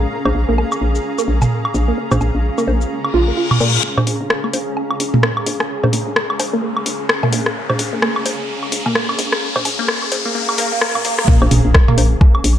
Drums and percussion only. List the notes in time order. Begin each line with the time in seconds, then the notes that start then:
0.25 low bongo, high woodblock
0.58 high woodblock
0.72 high woodblock, shaker
0.95 shaker
1.18 high woodblock, shaker
1.42 mid tom, high woodblock, shaker
1.65 high woodblock
1.74 shaker
2.11 mid tom, low bongo, high woodblock, shaker
2.21 high woodblock, shaker
2.58 high woodblock, shaker
2.68 low bongo
2.81 shaker
3.05 high woodblock
3.51 mid tom, high woodblock
3.60 shaker
3.98 mid tom, low bongo, high woodblock
4.07 open hi-hat
4.30 cross-stick
4.44 high woodblock
4.53 open hi-hat, low bongo
4.77 high woodblock
4.91 high woodblock
5.00 open hi-hat
5.14 mid tom
5.23 cross-stick
5.37 high woodblock
5.46 open hi-hat
5.60 cross-stick, high woodblock
5.84 mid tom, low bongo, high woodblock
5.93 open hi-hat
6.16 cross-stick
6.30 high woodblock
6.40 open hi-hat, low bongo, high woodblock
6.77 high woodblock
6.86 open hi-hat
7.09 cross-stick
7.23 mid tom, high woodblock
7.33 open hi-hat
7.46 cross-stick
7.70 mid tom, low bongo, high woodblock
7.79 open hi-hat
8.02 cross-stick, high woodblock
8.16 high woodblock
8.26 open hi-hat, low bongo
8.63 high woodblock
8.72 open hi-hat
8.86 mid tom, high woodblock
8.95 cross-stick
9.09 high woodblock
9.19 open hi-hat
9.32 cross-stick
9.56 mid tom, low bongo, high woodblock
9.65 open hi-hat, high woodblock
9.88 cross-stick
10.02 high woodblock
10.12 open hi-hat, low bongo
10.49 high woodblock
10.58 open hi-hat
10.81 cross-stick
10.95 mid tom, high woodblock
11.05 open hi-hat
11.19 cross-stick
11.28 kick, mid tom
11.42 low bongo, high woodblock
11.51 mid tom, open hi-hat
11.74 kick, cross-stick
11.88 mid tom, high woodblock
11.98 open hi-hat, low bongo
12.21 kick, high woodblock
12.35 high woodblock
12.44 open hi-hat